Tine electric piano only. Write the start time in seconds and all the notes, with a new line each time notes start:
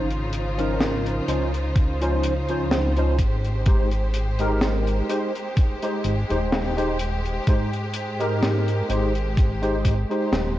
0.58 F3 C#4 D#4 A#4
1.28 F3 C#4 D#4 C5
2.01 F3 C#4 D#4 C5
2.49 F3 C#4 D#4 C5
2.97 F3 C#4 D#4 C5
3.66 G#3 D#4 G4 C5
4.39 G#3 D#4 G4 A#4
5.09 G#3 D#4 G4 C5
5.82 G#3 D#4 G4 C5
6.30 G#3 D#4 G4 C5
6.77 G#3 D#4 G4 C5
7.47 G#3 D#4 G4 C5
8.20 G#3 D#4 G4 A#4
8.89 G#3 D#4 G4 C5
9.62 G#3 D#4 G4 C5
10.10 G#3 D#4 G4 C5